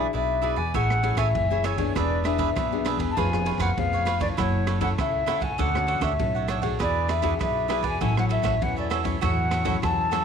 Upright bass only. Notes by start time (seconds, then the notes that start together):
0.14 B1
0.57 E2
0.74 A1
1.15 A1
1.35 F#1
1.96 E1
2.56 B1
2.97 E1
3.17 F1
3.58 F1
3.78 F1
4.38 F#1
4.99 C#2
5.39 C#2
5.59 D2
6.00 D2
6.20 B1
6.80 E2
7.41 B1
7.81 E2
8.01 A1
8.42 A1
8.62 E2
9.22 E2
9.83 E2